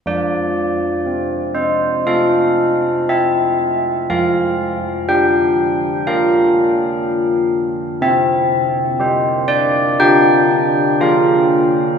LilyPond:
\new Staff \with { instrumentName = "Church bells" } { \time 4/4 \key f \major \tempo 4 = 60 << { d''4. c''8 f''4 e''4 | f''4 g''4 f''4. r8 | e''4. d''8 g''4 f''4 | } \\ { f4 c'4 <c' a'>2 | f4 d'4 <d' bes'>2 | c'4 <g' c''>4 d'4 <f' bes'>4 | } >> }